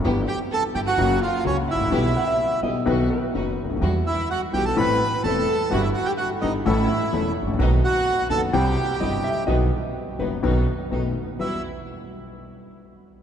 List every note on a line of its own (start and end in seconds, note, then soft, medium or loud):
0.04 0.24 G1 medium
0.04 0.24 G2 medium
0.04 0.24 E3 medium
0.04 0.24 G3 medium
0.04 0.24 B3 medium
0.04 0.24 E4 medium
0.04 0.24 G4 medium
0.27 0.38 G4 medium
0.27 0.39 G4 medium
0.27 0.39 G5 loud
0.52 0.62 A4 medium
0.52 0.64 A4 medium
0.52 0.63 A5 loud
0.74 0.94 G1 medium
0.74 0.94 G2 medium
0.74 0.94 E3 soft
0.74 0.94 G3 soft
0.74 0.94 B3 soft
0.74 0.94 E4 soft
0.74 0.94 G4 soft
0.74 0.94 G4 medium
0.74 0.81 G4 medium
0.74 0.80 G5 medium
0.86 1.19 F#4 medium
0.86 1.20 F#4 medium
0.86 1.19 F#5 loud
0.98 1.18 F#1 loud
0.98 1.18 F#2 medium
0.98 1.18 C#3 medium
0.98 1.18 F#3 medium
0.98 1.18 A#3 medium
0.98 1.18 C#4 medium
0.98 1.18 F#4 medium
1.22 1.44 F4 medium
1.22 1.44 F5 medium
1.45 1.65 C#2 medium
1.45 1.65 C#3 medium
1.45 1.65 F#3 soft
1.45 1.65 A#3 soft
1.45 1.65 C#4 soft
1.45 1.57 C#4 medium
1.45 1.65 F#4 medium
1.45 1.57 C#5 medium
1.69 2.59 E4 medium
1.69 2.60 E4 medium
1.69 2.60 E5 medium
1.74 1.80 G#1 soft
1.80 1.86 A1 medium
1.86 1.92 A#1 medium
1.86 1.91 A#1 medium
1.91 2.12 B1 medium
1.91 2.12 B2 medium
1.91 2.12 E3 medium
1.91 2.12 G3 medium
1.91 2.12 B3 medium
1.91 2.12 E4 medium
1.91 2.12 G4 medium
1.91 2.13 G4 medium
2.17 2.27 F#5 loud
2.27 2.61 E5 medium
2.62 2.83 B1 soft
2.62 2.83 B1 medium
2.62 2.83 B2 medium
2.62 2.83 E3 soft
2.62 2.83 G3 soft
2.62 2.83 B3 soft
2.62 2.83 E4 soft
2.62 2.83 G4 soft
2.62 2.83 G4 medium
2.62 2.85 D#5 medium
2.85 3.06 B1 medium
2.85 3.07 B1 medium
2.85 3.06 B2 medium
2.85 3.06 D#3 medium
2.85 3.06 F#3 medium
2.85 3.06 B3 medium
2.85 3.07 B3 medium
2.85 3.07 D#4 medium
2.85 3.06 F#4 medium
2.85 3.07 F#4 medium
2.85 2.93 B4 medium
3.10 3.68 B4 medium
3.34 3.54 F#1 medium
3.34 3.55 F#1 medium
3.34 3.54 F#2 medium
3.34 3.54 D#3 soft
3.34 3.54 F#3 soft
3.34 3.54 B3 soft
3.34 3.54 D#4 soft
3.34 3.55 F#4 soft
3.34 3.55 F#4 medium
3.64 3.70 C#2 soft
3.64 3.69 C#2 soft
3.68 3.76 D2 medium
3.68 3.90 A4 medium
3.76 3.82 D#2 medium
3.76 3.81 D#2 medium
3.81 4.02 E2 medium
3.81 4.02 E3 medium
3.81 4.02 G3 medium
3.81 4.02 B3 soft
3.81 4.02 E4 medium
3.81 4.02 F#4 medium
4.07 4.29 E4 medium
4.07 4.29 E5 medium
4.30 4.41 F#4 medium
4.30 4.42 F#4 medium
4.30 4.41 F#5 medium
4.52 4.73 B1 soft
4.52 4.73 B1 medium
4.52 4.73 B2 soft
4.52 4.73 E3 soft
4.52 4.73 G3 soft
4.52 4.73 B3 soft
4.52 4.73 E4 soft
4.52 4.73 F#4 soft
4.52 4.73 F#4 medium
4.52 4.65 G4 medium
4.52 4.66 G4 medium
4.52 4.65 G5 medium
4.65 4.77 A4 medium
4.65 4.76 A5 medium
4.76 4.97 A1 medium
4.76 4.97 A2 medium
4.76 4.97 E3 medium
4.76 4.97 A3 medium
4.76 4.97 C4 medium
4.76 4.97 E4 medium
4.76 4.97 A4 medium
4.76 5.21 B4 medium
4.76 5.23 B4 medium
4.76 5.21 B5 medium
5.23 5.44 E1 medium
5.23 5.44 E2 medium
5.23 5.44 E3 soft
5.23 5.44 A3 soft
5.23 5.44 A3 medium
5.23 5.44 C4 soft
5.23 5.44 E4 medium
5.23 5.44 A4 medium
5.23 5.68 A4 medium
5.23 5.69 A4 medium
5.23 5.73 A5 loud
5.70 5.91 G1 medium
5.70 5.92 G1 medium
5.70 5.91 G2 medium
5.70 5.91 E3 medium
5.70 5.91 G3 medium
5.70 5.91 B3 medium
5.70 5.91 E4 medium
5.70 5.83 F#4 medium
5.70 5.91 G4 medium
5.70 5.82 F#5 medium
5.82 5.88 E4 medium
5.82 5.90 E4 medium
5.82 5.88 E5 medium
5.94 6.05 F#4 medium
5.94 6.07 F#4 medium
5.94 6.07 F#5 medium
6.05 6.12 G4 medium
6.05 6.13 G4 medium
6.05 6.11 G5 medium
6.17 6.28 F#4 medium
6.17 6.30 F#4 medium
6.17 6.28 F#5 medium
6.41 6.62 G1 medium
6.41 6.62 G2 medium
6.41 6.62 E3 soft
6.41 6.62 G3 soft
6.41 6.62 G3 medium
6.41 6.62 B3 soft
6.41 6.52 D#4 medium
6.41 6.53 D#4 medium
6.41 6.62 E4 soft
6.41 6.62 G4 soft
6.41 6.52 D#5 medium
6.66 6.85 A1 loud
6.66 6.85 A2 loud
6.66 6.85 E3 medium
6.66 6.85 A3 medium
6.66 6.85 C#4 medium
6.66 7.32 E4 medium
6.66 6.86 E4 medium
6.66 7.33 E4 medium
6.66 6.86 A4 medium
6.66 7.32 E5 medium
7.13 7.32 E1 medium
7.13 7.32 E2 medium
7.13 7.32 E3 medium
7.13 7.32 A3 soft
7.13 7.32 A3 medium
7.13 7.32 C#4 soft
7.13 7.32 E4 medium
7.13 7.33 A4 medium
7.42 7.48 G#1 soft
7.42 7.48 G#1 medium
7.47 7.53 A1 medium
7.53 7.59 A#1 medium
7.58 7.78 B1 medium
7.58 7.79 B1 loud
7.58 7.79 B2 medium
7.58 7.78 D#3 medium
7.58 7.79 F#3 medium
7.58 7.78 B3 medium
7.58 7.79 B3 medium
7.58 7.79 D#4 medium
7.58 7.79 F#4 medium
7.83 8.26 F#4 medium
7.83 8.28 F#4 medium
7.83 8.27 F#5 loud
8.29 8.49 F#1 medium
8.29 8.50 F#1 medium
8.29 8.49 F#2 medium
8.29 8.49 D#3 soft
8.29 8.49 F#3 soft
8.29 8.49 B3 soft
8.29 8.50 B3 soft
8.29 8.50 D#4 medium
8.29 8.50 F#4 medium
8.29 8.41 A4 medium
8.29 8.41 A5 loud
8.53 8.73 C2 medium
8.53 8.73 C2 loud
8.53 8.73 C3 medium
8.53 8.73 E3 medium
8.53 8.73 G3 medium
8.53 8.73 C4 medium
8.53 8.73 E4 medium
8.53 9.44 G4 medium
8.53 8.73 G4 medium
8.53 9.44 G4 medium
8.53 9.44 G5 medium
9.00 9.20 G1 medium
9.00 9.21 G1 medium
9.00 9.20 G2 medium
9.00 9.20 E3 medium
9.00 9.20 G3 soft
9.00 9.20 C4 soft
9.00 9.20 E4 medium
9.00 9.21 G4 medium
9.00 9.22 D#5 medium
9.24 9.46 E5 medium
9.47 9.68 B1 medium
9.47 9.68 B2 medium
9.47 9.67 D#3 medium
9.47 9.67 F#3 medium
9.47 9.68 F#3 medium
9.47 9.68 B3 medium
9.47 9.68 D#4 medium
9.47 9.68 F#4 medium
9.47 10.21 D#5 medium
10.19 10.39 F#1 medium
10.19 10.39 F#2 medium
10.19 10.39 D#3 soft
10.19 10.39 F#3 soft
10.19 10.39 B3 soft
10.19 10.39 D#4 soft
10.19 10.39 F#4 soft
10.19 11.12 B4 medium
10.43 10.63 B1 medium
10.43 10.64 B1 medium
10.43 10.63 B2 medium
10.43 10.63 D#3 medium
10.43 10.63 F#3 medium
10.43 10.63 B3 medium
10.43 10.63 D#4 medium
10.43 10.63 F#4 medium
10.91 11.12 B1 medium
10.91 11.12 B2 soft
10.91 11.11 D#3 soft
10.91 11.11 A3 soft
10.91 11.12 A3 soft
10.91 11.12 B3 soft
10.91 11.12 D#4 soft
10.91 11.12 F#4 medium
11.39 11.59 E2 soft
11.39 11.60 E2 soft
11.39 11.59 G3 soft
11.39 11.60 G3 soft
11.39 11.59 E4 soft
11.39 11.60 E4 soft
11.39 11.62 E4 medium
11.39 11.59 F#4 soft
11.39 11.60 F#4 medium
11.39 11.62 B4 medium
11.39 11.62 E5 medium